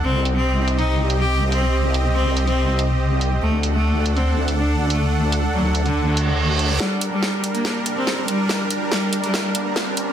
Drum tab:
HH |--x---xx--x---x-|--x---xx--x---x-|--x---xx--x---x-|--x---xx--x---x-|
SD |----------------|----------------|----------------|----------------|

HH |--x---xx--x---x-|--x---xx--x---x-|
SD |o---o---o---o---|o---o---o---o---|